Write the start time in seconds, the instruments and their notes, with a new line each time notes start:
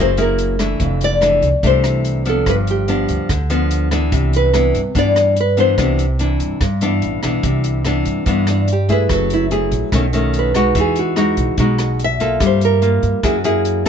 Already playing: upright bass F#1, nylon-string guitar F#3
0.01 nylon-string guitar C5
0.17 nylon-string guitar A#3 E4 G#4, closed hi-hat
0.21 nylon-string guitar A#4
0.38 closed hi-hat
0.59 nylon-string guitar E3 A3 D4, cross-stick, closed hi-hat
0.80 upright bass F1, nylon-string guitar F2, kick, closed hi-hat
1.01 nylon-string guitar D5, closed hi-hat
1.21 nylon-string guitar E3 A3 D4, cross-stick, closed hi-hat
1.42 upright bass C2, closed hi-hat
1.63 upright bass C2, nylon-string guitar C3 E3 A3 D4 C5, kick, closed hi-hat
1.84 cross-stick, closed hi-hat
2.05 closed hi-hat
2.25 nylon-string guitar F3 B3 D4 A4, closed hi-hat
2.46 upright bass G1, nylon-string guitar G2 B4, kick, cross-stick, closed hi-hat
2.67 nylon-string guitar G4, closed hi-hat
2.88 nylon-string guitar F3 B3 D4, closed hi-hat
3.08 upright bass D2, closed hi-hat
3.29 upright bass D2, nylon-string guitar D3, kick, cross-stick, closed hi-hat
3.50 nylon-string guitar F3 B3 D4, closed hi-hat
3.71 closed hi-hat
3.91 nylon-string guitar E3 B3 D4, cross-stick, closed hi-hat
4.12 upright bass C2, nylon-string guitar C3, kick, closed hi-hat
4.33 nylon-string guitar B4, closed hi-hat
4.53 nylon-string guitar E3 B3 D4, cross-stick, closed hi-hat
4.74 upright bass G2, closed hi-hat
4.95 nylon-string guitar G2 E3 B3 D4 D5, upright bass G2, kick, closed hi-hat
5.16 cross-stick, closed hi-hat
5.36 closed hi-hat
5.40 nylon-string guitar B4
5.57 nylon-string guitar E3 B3 D4 C5, closed hi-hat
5.78 upright bass C2, nylon-string guitar C3 E3 B3 D4, kick, cross-stick, closed hi-hat
5.99 closed hi-hat
6.19 nylon-string guitar E3 D4, closed hi-hat
6.40 upright bass G2, closed hi-hat
6.61 upright bass G2, nylon-string guitar G2, kick, cross-stick, closed hi-hat
6.81 nylon-string guitar E3 B3 D4, closed hi-hat
7.02 upright bass A1, closed hi-hat
7.23 upright bass B1, nylon-string guitar E3 B3 D4, cross-stick, closed hi-hat
7.43 upright bass C2, nylon-string guitar C3, kick, closed hi-hat
7.64 closed hi-hat
7.85 nylon-string guitar E3 B3 D4, cross-stick, closed hi-hat
8.05 upright bass G2, kick, closed hi-hat
8.26 upright bass G2, nylon-string guitar G2 E3 B3 D4, kick, closed hi-hat
8.47 nylon-string guitar D4, cross-stick, closed hi-hat
8.68 closed hi-hat
8.73 nylon-string guitar G4
8.89 nylon-string guitar A3 E4 G#4 B4, kick, closed hi-hat
9.09 upright bass F#1, nylon-string guitar F#3, kick, cross-stick, closed hi-hat
9.14 nylon-string guitar A4
9.30 nylon-string guitar E4, closed hi-hat
9.51 nylon-string guitar A3 E4 G#4, closed hi-hat
9.71 upright bass A#1, kick, closed hi-hat
9.92 upright bass B1, nylon-string guitar B2 D#3 A3 C#4, kick, cross-stick, closed hi-hat
10.13 nylon-string guitar D#3 A3 C#4, closed hi-hat
10.34 closed hi-hat
10.39 nylon-string guitar B4
10.54 nylon-string guitar G#3 D#4 F#4, kick, cross-stick, closed hi-hat
10.75 upright bass E2, nylon-string guitar E3, kick, closed hi-hat
10.80 nylon-string guitar G#4
10.96 nylon-string guitar F#4, closed hi-hat
11.16 nylon-string guitar G#3 D#4 F#4, cross-stick, closed hi-hat
11.37 upright bass B1, kick, closed hi-hat
11.58 upright bass B1, nylon-string guitar B2 G#3 D#4 F#4, kick, closed hi-hat
11.79 cross-stick, closed hi-hat
11.99 closed hi-hat
12.04 nylon-string guitar E5
12.20 nylon-string guitar A#3 F4 A4, kick, closed hi-hat
12.40 upright bass G2, nylon-string guitar G3, kick, cross-stick, closed hi-hat
12.47 nylon-string guitar C5
12.61 nylon-string guitar A#4, closed hi-hat
12.82 nylon-string guitar A#3 F4, closed hi-hat
13.03 upright bass G2, kick, closed hi-hat
13.23 upright bass F#2, nylon-string guitar F#3 A#3 E4 G#4, kick, cross-stick, closed hi-hat
13.44 nylon-string guitar A#3 E4 G#4, closed hi-hat
13.65 closed hi-hat
13.85 nylon-string guitar C4, kick